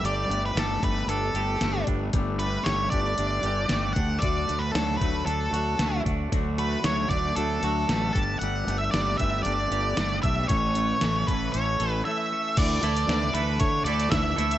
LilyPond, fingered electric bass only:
\new Staff \with { instrumentName = "Fingered electric bass" } { \clef bass \time 4/4 \key d \major \tempo 4 = 115 g,,8 g,,8 g,,8 g,,8 g,,8 g,,8 g,,8 g,,8 | g,,4 g,,8 g,,8 g,,8 g,,8 g,,8 d,8 | d,8 d,8 d,8 d,8 d,8 d,8 d,8 d,8 | d,4 d,8 d,8 d,8 d,8 a,,8 g,,8 |
g,,8 g,,8 g,,8 g,,8 g,,8 g,,8 g,,8 b,,8 | a,,4 a,,8 a,,8 a,,8 a,,8 r4 | d,8 d,8 d,8 d,8 d8 d,8 d,8 d,8 | }